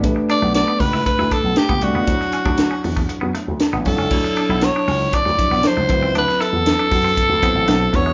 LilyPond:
<<
  \new Staff \with { instrumentName = "Alto saxophone" } { \time 4/4 \key d \major \tempo 4 = 118 r8 d''8 d''8 b'8 b'8 a'8 g'8 fis'8~ | fis'2~ fis'8 r4 a'8~ | a'4 cis''4 d''4 c''4 | b'8 a'2. cis''8 | }
  \new Staff \with { instrumentName = "Tine electric piano" } { \time 4/4 \key d \major <a d' g' b'>4. r2 <a d' g' d''>8 | <fis d' e' c'' cis''>4. r2 <fis d' e' cis''>8 | <fis d' e' cis''>4. r4 <f fis d' e' cis''>4 <f fis c' e' b'>8~ | <f fis c' e' b'>4 r4. <fis c' e' c''>4 <gis d' fis' b' cis''>8 | }
  \new Staff \with { instrumentName = "Clean electric guitar" } { \time 4/4 \key d \major r8 d'16 a16 r16 b16 r16 e'16 r16 e'16 d'16 r8 b16 r16 b16 | r8 cis'16 d'16 r16 cis'16 r16 a16 r16 b16 a16 r8 b16 r16 cis'16 | r8 d'16 e'16 r16 d'16 cis'16 r16 d'16 r8 b16 r16 a16 r16 c'16 | d'16 r16 e'16 r8 d'16 r16 c'16 r8 b16 r16 a16 r8 gis16 | }
  \new Staff \with { instrumentName = "Slap bass" } { \clef bass \time 4/4 \key d \major a,,16 r8 b,,8 r16 cis,8 r16 d,16 r16 b,,16 r16 cis,16 c,16 cis,16 | d,16 r8 d,8 r16 e,8 r16 fis,16 r16 d,16 r16 a,,16 c,16 cis,16 | d,16 r8 b,,8 r16 cis,8 r16 d,16 r16 b,,16 r16 cis,16 d,16 cis,16 | d,16 r8 e,8 r16 fis,8 r16 d,16 r16 a,,16 b,,8 e,8 | }
  \new DrumStaff \with { instrumentName = "Drums" } \drummode { \time 4/4 <hh bd>8 hh8 <hh sn>8 <hho bd>16 sn16 <hh bd>16 sn16 <hh bd>8 <hh sn>16 bd16 hh8 | <hh bd>16 sn16 hh16 bd16 <hh sn>8 hho16 bd16 hh8 hh8 <hh sn>8 <hho bd>8 | <cymc bd>16 sn16 hh8 <hh sn>8 hho8 <hh bd>16 sn16 <hh bd>16 sn16 <hh sn>8 <hh bd>8 | hh16 sn16 hh8 <hh sn>8 <hho bd>16 sn16 <hh bd>8 <hh bd>8 <hh sn>8 <hh bd>8 | }
>>